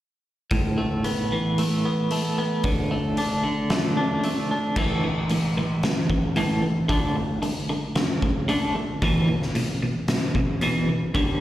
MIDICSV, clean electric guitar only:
0, 0, Header, 1, 2, 480
1, 0, Start_track
1, 0, Tempo, 531915
1, 459, Time_signature, 4, 2, 24, 8
1, 10292, End_track
2, 0, Start_track
2, 0, Title_t, "Clean electric guitar"
2, 0, Program_c, 0, 27
2, 462, Note_on_c, 0, 45, 53
2, 701, Note_on_c, 0, 57, 55
2, 942, Note_on_c, 0, 59, 55
2, 1193, Note_on_c, 0, 52, 53
2, 1429, Note_off_c, 0, 57, 0
2, 1432, Note_on_c, 0, 57, 60
2, 1661, Note_off_c, 0, 59, 0
2, 1662, Note_off_c, 0, 45, 0
2, 1672, Note_on_c, 0, 59, 55
2, 1904, Note_off_c, 0, 57, 0
2, 1907, Note_on_c, 0, 57, 55
2, 2139, Note_off_c, 0, 59, 0
2, 2150, Note_on_c, 0, 59, 58
2, 2384, Note_off_c, 0, 52, 0
2, 2386, Note_off_c, 0, 59, 0
2, 2387, Note_on_c, 0, 50, 56
2, 2622, Note_off_c, 0, 57, 0
2, 2626, Note_on_c, 0, 57, 57
2, 2868, Note_on_c, 0, 62, 60
2, 3089, Note_off_c, 0, 50, 0
2, 3100, Note_on_c, 0, 50, 55
2, 3330, Note_off_c, 0, 57, 0
2, 3341, Note_on_c, 0, 57, 62
2, 3572, Note_off_c, 0, 62, 0
2, 3583, Note_on_c, 0, 62, 60
2, 3818, Note_off_c, 0, 57, 0
2, 3829, Note_on_c, 0, 57, 61
2, 4060, Note_off_c, 0, 62, 0
2, 4071, Note_on_c, 0, 62, 65
2, 4301, Note_off_c, 0, 50, 0
2, 4302, Note_on_c, 0, 45, 66
2, 4305, Note_off_c, 0, 57, 0
2, 4306, Note_off_c, 0, 62, 0
2, 4311, Note_on_c, 0, 52, 70
2, 4315, Note_on_c, 0, 57, 80
2, 4527, Note_off_c, 0, 45, 0
2, 4532, Note_off_c, 0, 52, 0
2, 4534, Note_off_c, 0, 57, 0
2, 4547, Note_on_c, 0, 45, 52
2, 4550, Note_on_c, 0, 52, 58
2, 4760, Note_off_c, 0, 45, 0
2, 4762, Note_off_c, 0, 52, 0
2, 4788, Note_on_c, 0, 45, 52
2, 4793, Note_on_c, 0, 52, 63
2, 5001, Note_off_c, 0, 45, 0
2, 5003, Note_off_c, 0, 52, 0
2, 5030, Note_on_c, 0, 45, 58
2, 5034, Note_on_c, 0, 52, 60
2, 5241, Note_off_c, 0, 45, 0
2, 5243, Note_off_c, 0, 52, 0
2, 5267, Note_on_c, 0, 45, 56
2, 5268, Note_on_c, 0, 52, 69
2, 5480, Note_off_c, 0, 45, 0
2, 5480, Note_off_c, 0, 52, 0
2, 5506, Note_on_c, 0, 45, 51
2, 5510, Note_on_c, 0, 52, 57
2, 5719, Note_off_c, 0, 45, 0
2, 5721, Note_off_c, 0, 52, 0
2, 5740, Note_on_c, 0, 45, 75
2, 5747, Note_on_c, 0, 52, 74
2, 5753, Note_on_c, 0, 57, 83
2, 5964, Note_off_c, 0, 45, 0
2, 5970, Note_off_c, 0, 52, 0
2, 5973, Note_off_c, 0, 57, 0
2, 5975, Note_on_c, 0, 45, 58
2, 5979, Note_on_c, 0, 52, 67
2, 6194, Note_off_c, 0, 45, 0
2, 6196, Note_off_c, 0, 52, 0
2, 6212, Note_on_c, 0, 50, 72
2, 6221, Note_on_c, 0, 57, 74
2, 6225, Note_on_c, 0, 62, 73
2, 6442, Note_off_c, 0, 50, 0
2, 6446, Note_off_c, 0, 57, 0
2, 6448, Note_off_c, 0, 62, 0
2, 6459, Note_on_c, 0, 50, 50
2, 6461, Note_on_c, 0, 57, 61
2, 6676, Note_off_c, 0, 50, 0
2, 6677, Note_off_c, 0, 57, 0
2, 6696, Note_on_c, 0, 50, 60
2, 6700, Note_on_c, 0, 57, 67
2, 6914, Note_off_c, 0, 50, 0
2, 6916, Note_off_c, 0, 57, 0
2, 6942, Note_on_c, 0, 50, 54
2, 6946, Note_on_c, 0, 57, 64
2, 7157, Note_off_c, 0, 50, 0
2, 7159, Note_off_c, 0, 57, 0
2, 7179, Note_on_c, 0, 50, 58
2, 7185, Note_on_c, 0, 57, 62
2, 7395, Note_off_c, 0, 50, 0
2, 7398, Note_off_c, 0, 57, 0
2, 7421, Note_on_c, 0, 50, 49
2, 7424, Note_on_c, 0, 57, 61
2, 7636, Note_off_c, 0, 50, 0
2, 7638, Note_off_c, 0, 57, 0
2, 7654, Note_on_c, 0, 50, 77
2, 7661, Note_on_c, 0, 57, 72
2, 7667, Note_on_c, 0, 62, 80
2, 7882, Note_off_c, 0, 50, 0
2, 7886, Note_off_c, 0, 57, 0
2, 7889, Note_off_c, 0, 62, 0
2, 7898, Note_on_c, 0, 50, 64
2, 7903, Note_on_c, 0, 57, 64
2, 8115, Note_off_c, 0, 50, 0
2, 8117, Note_off_c, 0, 57, 0
2, 8139, Note_on_c, 0, 40, 64
2, 8148, Note_on_c, 0, 47, 75
2, 8154, Note_on_c, 0, 52, 80
2, 8365, Note_off_c, 0, 40, 0
2, 8369, Note_off_c, 0, 47, 0
2, 8372, Note_off_c, 0, 52, 0
2, 8379, Note_on_c, 0, 40, 50
2, 8380, Note_on_c, 0, 47, 64
2, 8595, Note_off_c, 0, 40, 0
2, 8596, Note_off_c, 0, 47, 0
2, 8619, Note_on_c, 0, 40, 61
2, 8628, Note_on_c, 0, 47, 72
2, 8835, Note_off_c, 0, 40, 0
2, 8840, Note_off_c, 0, 47, 0
2, 8865, Note_on_c, 0, 40, 56
2, 8869, Note_on_c, 0, 47, 66
2, 9078, Note_off_c, 0, 40, 0
2, 9080, Note_off_c, 0, 47, 0
2, 9100, Note_on_c, 0, 40, 59
2, 9105, Note_on_c, 0, 47, 66
2, 9315, Note_off_c, 0, 40, 0
2, 9318, Note_off_c, 0, 47, 0
2, 9341, Note_on_c, 0, 40, 57
2, 9345, Note_on_c, 0, 47, 60
2, 9556, Note_off_c, 0, 40, 0
2, 9558, Note_off_c, 0, 47, 0
2, 9578, Note_on_c, 0, 40, 67
2, 9588, Note_on_c, 0, 47, 79
2, 9593, Note_on_c, 0, 52, 85
2, 9804, Note_off_c, 0, 40, 0
2, 9809, Note_off_c, 0, 47, 0
2, 9812, Note_off_c, 0, 52, 0
2, 9826, Note_on_c, 0, 40, 61
2, 9830, Note_on_c, 0, 47, 72
2, 10038, Note_off_c, 0, 40, 0
2, 10040, Note_off_c, 0, 47, 0
2, 10055, Note_on_c, 0, 43, 67
2, 10061, Note_on_c, 0, 50, 78
2, 10067, Note_on_c, 0, 55, 73
2, 10282, Note_off_c, 0, 43, 0
2, 10286, Note_off_c, 0, 50, 0
2, 10288, Note_off_c, 0, 55, 0
2, 10292, End_track
0, 0, End_of_file